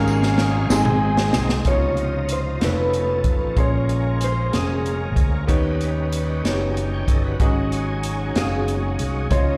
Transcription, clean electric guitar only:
0.72 G#4
1.68 C#5
2.33 C5
2.64 B4
3.60 C#5
4.24 C5
4.54 G#4
8.38 G#4
9.32 C#5

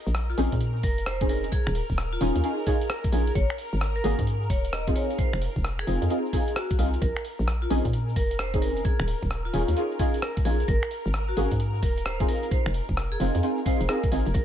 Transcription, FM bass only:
0.07 A#1
0.38 A#1
0.52 A#2
0.83 F1
1.67 D#1
1.90 D#1
2.21 D#1
2.35 D#2
3.12 A#1
3.35 G#1
3.73 G#1
4.04 G#1
4.19 G#2
4.50 D#1
5.33 F1
5.56 F1
5.87 F1
6.02 F2
6.79 C2
7.02 A#1
7.39 A#1
7.70 A#1
7.85 A#2
8.16 F1
9.00 D#1
9.23 D#1
9.54 D#1
9.68 D#2
10.45 A#1
10.68 G#1
11.06 G#1
11.37 G#1
11.52 G#2
11.83 D#1
12.66 F1
12.89 F1
13.20 F1
13.35 F2
13.81 F1
14.12 G#1
14.26 F1
14.35 A#1

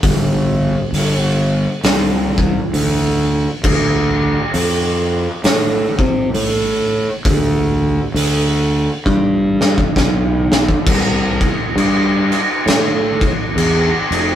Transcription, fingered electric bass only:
0.03 G1
0.93 G1
1.84 C2
2.74 D2
3.64 D2
4.54 F2
5.44 A2
5.99 C3
6.34 A2
7.25 D2
8.14 D2
9.06 G2
9.97 B1
10.86 C2
11.76 G2
12.66 A2
13.56 E2
14.11 F1

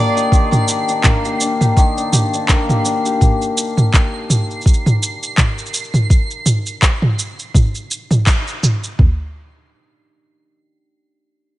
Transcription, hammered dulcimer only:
Already playing: D#3 A#3 C4 D4 F4 G4
0.16 G4
0.32 D#3 G4
0.53 D4
0.69 G4
0.90 D4
1.06 A#3
1.25 G4
1.41 D4
1.61 G4
1.77 D#3 G4
1.97 D4
2.13 G4
2.34 D4
2.50 A#3
2.70 G4
2.86 D4
3.06 G4

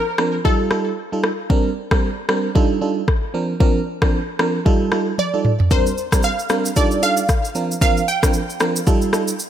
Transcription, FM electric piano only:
0.18 F3 C4 D4 A#4
0.44 G3 D#4 F4 A4
0.71 G3 D#4 F4 A4
1.12 G3 D#4 F4 A4
1.50 G3 C4 D4 A#4
1.91 G3 C4 D4 A#4
2.29 G3 C4 D4 A#4
2.55 G3 D4 D#4 F4 A4
2.81 G3 D4 D#4 F4 A4
3.34 F3 C4 D4 A#4
3.60 F3 C4 D4 A#4
4.02 F3 C4 D4 A#4
4.39 F3 C4 D4 A#4
4.65 G3 D#4 F4 A4
4.92 G3 D#4 F4 A4
5.33 G3 D#4 F4 A4
5.71 G3 C4 D4 A#4
6.12 G3 C4 D4 A#4
6.50 G3 C4 D4 A#4
6.76 G3 D4 D#4 F4 A4
7.02 G3 D4 D#4 F4 A4
7.55 F3 C4 D4 A#4
7.81 F3 C4 D4 A#4
8.23 F3 C4 D4 A#4
8.60 F3 C4 D4 A#4
8.87 G3 D#4 F4 A4
9.13 G3 D#4 F4 A4

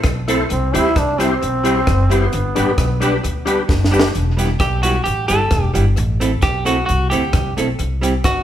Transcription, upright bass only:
0.05 B1
0.51 C2
0.75 D2
0.97 C2
1.43 B1
1.88 F#1
2.34 G1
2.56 A1
2.78 B1
3.24 D2
3.70 F#1
4.15 E1
4.60 B1
5.06 A1
5.30 G1
5.52 E1
5.76 G1
5.98 A1
6.43 B1
6.89 C2
7.13 D2
7.34 C2
7.58 B1
7.80 C2
8.25 G1

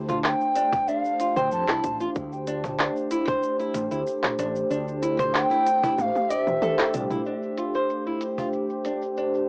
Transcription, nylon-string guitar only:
0.09 F4
0.56 D4
0.88 D4
1.20 F4
1.36 C5
1.68 E4
2.00 F4
2.47 D4
2.80 D4
3.11 E4
3.28 C5
3.60 E4
3.91 E4
4.39 D4
4.71 D4
5.02 E4
5.19 C5
5.51 E4
5.83 E4
6.30 D5
6.62 A4
6.78 A4
6.94 D4
7.11 E4
7.26 D4
7.58 F4
7.75 C5
8.07 E4
8.38 F4
8.85 D4
9.18 D4

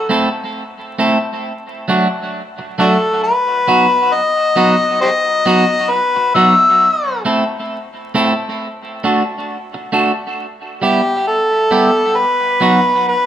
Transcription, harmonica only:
Already playing: A4
2.79 D4 F#4 A4
3.24 B4
4.13 D#5
5.01 G4 C5 D#5
5.90 B4
6.35 E5
10.82 G4
11.27 A4
12.17 B4
13.08 B4

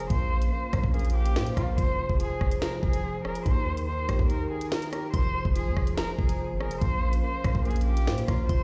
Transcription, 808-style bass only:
0.10 A#1
0.73 A#1
0.84 A#1
1.36 A#2
1.57 A#1
1.78 F1
2.09 F1
2.41 F1
2.83 F1
3.46 D#2
4.09 C#2
4.19 D#2
5.14 F1
5.45 F1
5.66 F2
5.77 F1
6.19 F1
6.50 G#1
6.66 F1
6.81 A#1
7.44 A#1
7.55 A#1
8.07 A#2
8.28 A#1
8.49 F1

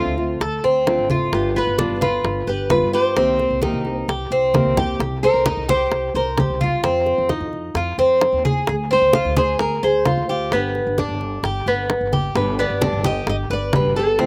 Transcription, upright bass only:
0.06 D2
0.40 D2
0.64 D2
0.98 G#1
1.32 G1
1.67 G1
1.90 G1
2.24 G1
2.47 G1
2.82 G2
3.16 C2
3.50 C2
3.74 C2
4.08 C2
4.30 C2
4.65 C2
5.00 C2
5.34 C2
5.57 C2
5.92 C2
6.14 C2
6.50 C2
6.84 F2
7.18 F2
7.40 F2
7.74 F2
7.98 F2
8.33 D#2
8.68 D2
9.02 D2
9.25 D2
9.60 D2
9.83 D2
10.17 D2
10.52 G1
10.87 G1
11.09 G1
11.43 G1
11.66 G1
12.01 G1
12.35 G1
12.70 G1
12.93 G1
13.27 G1
13.50 G1
13.85 G1
14.19 D2

